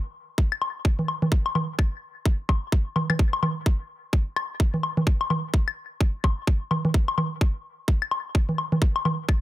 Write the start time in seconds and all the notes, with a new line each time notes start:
0.38 kick
0.52 high woodblock
0.62 low woodblock
0.85 kick
0.99 low conga
1.08 low woodblock
1.22 low conga
1.32 kick
1.46 low woodblock
1.55 low conga, low woodblock
1.79 kick, high woodblock
2.25 kick
2.49 kick, low woodblock
2.72 kick
2.96 low conga, low woodblock
3.10 low conga, high woodblock
3.19 kick
3.33 low woodblock
3.43 low conga, low woodblock
3.66 kick
4.13 kick
4.36 high woodblock, low woodblock
4.60 kick
4.74 low conga
4.83 low woodblock
4.97 low conga
5.07 kick
5.21 low woodblock
5.30 low conga, low woodblock
5.54 kick
5.68 high woodblock
6.01 kick
6.24 kick, low woodblock
6.47 kick
6.71 low conga, low woodblock
6.85 low conga
6.94 kick
7.08 low woodblock
7.18 low conga, low woodblock
7.41 kick
7.88 kick
8.02 high woodblock
8.11 low woodblock
8.35 kick
8.49 low conga
8.58 low woodblock
8.72 low conga
8.82 kick
8.96 low woodblock
9.05 low conga, low woodblock
9.29 kick, high woodblock